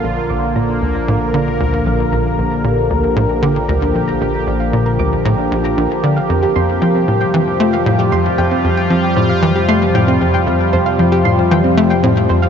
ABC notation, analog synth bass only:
X:1
M:4/4
L:1/8
Q:1/4=115
K:Bblyd
V:1 name="Analog synth bass" clef=bass
B,,, B,,, B,, D,, A,, D, D,, B,,, | B,,, B,,, B,, D,, A,, D, D,, B,,, | B,,, B,,, B,, D,, A,, B,,, B,,, D, | F,, F,, F, A,, E, A, A,, F,, |
F,, F,, F, A,, E, A, A,, F,, | F,, F,, F, A,, E, A, A,, F,, |]